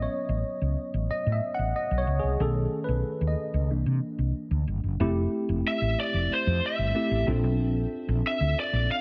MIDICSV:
0, 0, Header, 1, 5, 480
1, 0, Start_track
1, 0, Tempo, 649351
1, 1777, Time_signature, 4, 2, 24, 8
1, 6659, End_track
2, 0, Start_track
2, 0, Title_t, "Lead electric guitar"
2, 0, Program_c, 0, 29
2, 4195, Note_on_c, 0, 76, 109
2, 4432, Note_off_c, 0, 76, 0
2, 4435, Note_on_c, 0, 74, 99
2, 4674, Note_off_c, 0, 74, 0
2, 4681, Note_on_c, 0, 72, 87
2, 4917, Note_off_c, 0, 72, 0
2, 4922, Note_on_c, 0, 76, 84
2, 5361, Note_off_c, 0, 76, 0
2, 6115, Note_on_c, 0, 76, 101
2, 6353, Note_off_c, 0, 76, 0
2, 6355, Note_on_c, 0, 74, 84
2, 6587, Note_off_c, 0, 74, 0
2, 6590, Note_on_c, 0, 77, 108
2, 6659, Note_off_c, 0, 77, 0
2, 6659, End_track
3, 0, Start_track
3, 0, Title_t, "Tine electric piano"
3, 0, Program_c, 1, 4
3, 0, Control_c, 1, 64, 127
3, 0, Note_on_c, 1, 54, 54
3, 0, Note_on_c, 1, 59, 53
3, 0, Note_on_c, 1, 61, 61
3, 0, Note_on_c, 1, 75, 99
3, 0, Note_on_c, 1, 76, 80
3, 18, Note_on_c, 1, 73, 86
3, 468, Note_off_c, 1, 73, 0
3, 818, Note_off_c, 1, 75, 0
3, 818, Note_on_c, 1, 75, 105
3, 890, Note_off_c, 1, 75, 0
3, 978, Note_off_c, 1, 76, 0
3, 978, Note_on_c, 1, 76, 97
3, 1142, Note_off_c, 1, 76, 0
3, 1142, Note_on_c, 1, 78, 99
3, 1300, Note_on_c, 1, 75, 91
3, 1304, Note_off_c, 1, 78, 0
3, 1372, Note_off_c, 1, 75, 0
3, 1462, Note_on_c, 1, 73, 100
3, 1622, Note_on_c, 1, 68, 84
3, 1624, Note_off_c, 1, 73, 0
3, 1767, Note_off_c, 1, 68, 0
3, 1773, Note_on_c, 1, 51, 58
3, 1776, Note_on_c, 1, 68, 58
3, 1780, Note_on_c, 1, 57, 50
3, 1783, Note_off_c, 1, 61, 0
3, 1783, Note_on_c, 1, 61, 62
3, 1784, Note_on_c, 1, 69, 97
3, 1786, Control_c, 1, 64, 0
3, 1787, Note_off_c, 1, 54, 0
3, 1790, Note_off_c, 1, 59, 0
3, 1914, Control_c, 1, 64, 127
3, 2094, Note_off_c, 1, 51, 0
3, 2096, Note_off_c, 1, 68, 0
3, 2098, Note_off_c, 1, 57, 0
3, 2100, Note_off_c, 1, 61, 0
3, 2101, Note_on_c, 1, 71, 86
3, 2110, Note_off_c, 1, 69, 0
3, 2421, Note_on_c, 1, 75, 78
3, 2429, Note_off_c, 1, 71, 0
3, 2528, Note_off_c, 1, 75, 0
3, 2736, Note_on_c, 1, 52, 50
3, 2739, Note_on_c, 1, 58, 53
3, 2743, Note_on_c, 1, 62, 58
3, 2748, Control_c, 1, 64, 0
3, 2858, Control_c, 1, 64, 127
3, 3056, Note_off_c, 1, 52, 0
3, 3058, Note_off_c, 1, 58, 0
3, 3060, Note_off_c, 1, 62, 0
3, 3696, Note_on_c, 1, 57, 93
3, 3698, Note_on_c, 1, 60, 84
3, 3701, Note_on_c, 1, 64, 93
3, 3705, Note_on_c, 1, 67, 102
3, 3708, Control_c, 1, 64, 0
3, 3848, Control_c, 1, 64, 127
3, 4487, Note_off_c, 1, 57, 0
3, 4488, Note_off_c, 1, 60, 0
3, 4490, Note_off_c, 1, 64, 0
3, 4492, Note_off_c, 1, 67, 0
3, 5135, Note_on_c, 1, 57, 83
3, 5137, Note_on_c, 1, 60, 66
3, 5140, Note_on_c, 1, 64, 64
3, 5143, Note_on_c, 1, 67, 90
3, 5363, Note_off_c, 1, 60, 0
3, 5372, Note_on_c, 1, 60, 83
3, 5374, Note_on_c, 1, 62, 79
3, 5376, Note_on_c, 1, 65, 74
3, 5377, Note_off_c, 1, 57, 0
3, 5379, Note_off_c, 1, 64, 0
3, 5380, Note_off_c, 1, 67, 0
3, 5381, Note_on_c, 1, 69, 83
3, 5388, Control_c, 1, 64, 0
3, 5522, Control_c, 1, 64, 127
3, 6166, Note_off_c, 1, 60, 0
3, 6167, Note_off_c, 1, 62, 0
3, 6168, Note_off_c, 1, 65, 0
3, 6170, Note_off_c, 1, 69, 0
3, 6659, End_track
4, 0, Start_track
4, 0, Title_t, "Fretless electric bass"
4, 0, Program_c, 2, 35
4, 213, Note_on_c, 2, 33, 98
4, 307, Note_off_c, 2, 33, 0
4, 455, Note_on_c, 2, 37, 82
4, 549, Note_off_c, 2, 37, 0
4, 694, Note_on_c, 2, 33, 89
4, 788, Note_off_c, 2, 33, 0
4, 934, Note_on_c, 2, 45, 82
4, 1029, Note_off_c, 2, 45, 0
4, 1174, Note_on_c, 2, 33, 80
4, 1268, Note_off_c, 2, 33, 0
4, 1412, Note_on_c, 2, 35, 93
4, 1507, Note_off_c, 2, 35, 0
4, 1531, Note_on_c, 2, 37, 86
4, 1627, Note_off_c, 2, 37, 0
4, 1651, Note_on_c, 2, 36, 77
4, 1747, Note_off_c, 2, 36, 0
4, 1774, Note_on_c, 2, 35, 113
4, 1962, Note_off_c, 2, 35, 0
4, 2133, Note_on_c, 2, 35, 89
4, 2228, Note_off_c, 2, 35, 0
4, 2373, Note_on_c, 2, 39, 85
4, 2468, Note_off_c, 2, 39, 0
4, 2615, Note_on_c, 2, 37, 93
4, 2735, Note_off_c, 2, 37, 0
4, 2735, Note_on_c, 2, 36, 100
4, 2830, Note_off_c, 2, 36, 0
4, 2855, Note_on_c, 2, 48, 90
4, 2949, Note_off_c, 2, 48, 0
4, 3094, Note_on_c, 2, 36, 83
4, 3189, Note_off_c, 2, 36, 0
4, 3333, Note_on_c, 2, 38, 86
4, 3428, Note_off_c, 2, 38, 0
4, 3456, Note_on_c, 2, 31, 90
4, 3550, Note_off_c, 2, 31, 0
4, 3574, Note_on_c, 2, 30, 68
4, 3669, Note_off_c, 2, 30, 0
4, 3696, Note_on_c, 2, 29, 118
4, 3884, Note_off_c, 2, 29, 0
4, 4057, Note_on_c, 2, 29, 94
4, 4151, Note_off_c, 2, 29, 0
4, 4298, Note_on_c, 2, 33, 81
4, 4392, Note_off_c, 2, 33, 0
4, 4538, Note_on_c, 2, 29, 92
4, 4631, Note_off_c, 2, 29, 0
4, 4782, Note_on_c, 2, 41, 92
4, 4874, Note_off_c, 2, 41, 0
4, 5017, Note_on_c, 2, 31, 84
4, 5111, Note_off_c, 2, 31, 0
4, 5257, Note_on_c, 2, 33, 89
4, 5351, Note_off_c, 2, 33, 0
4, 5376, Note_on_c, 2, 34, 104
4, 5497, Note_off_c, 2, 34, 0
4, 5497, Note_on_c, 2, 35, 81
4, 5613, Note_off_c, 2, 35, 0
4, 5613, Note_on_c, 2, 34, 108
4, 5802, Note_off_c, 2, 34, 0
4, 5976, Note_on_c, 2, 34, 102
4, 6071, Note_off_c, 2, 34, 0
4, 6213, Note_on_c, 2, 38, 84
4, 6309, Note_off_c, 2, 38, 0
4, 6454, Note_on_c, 2, 34, 92
4, 6549, Note_off_c, 2, 34, 0
4, 6659, End_track
5, 0, Start_track
5, 0, Title_t, "Muted fretless electric bass strokes"
5, 814, Note_on_c, 9, 29, 48
5, 888, Note_off_c, 9, 29, 0
5, 4661, Note_on_c, 9, 29, 51
5, 4734, Note_off_c, 9, 29, 0
5, 6659, End_track
0, 0, End_of_file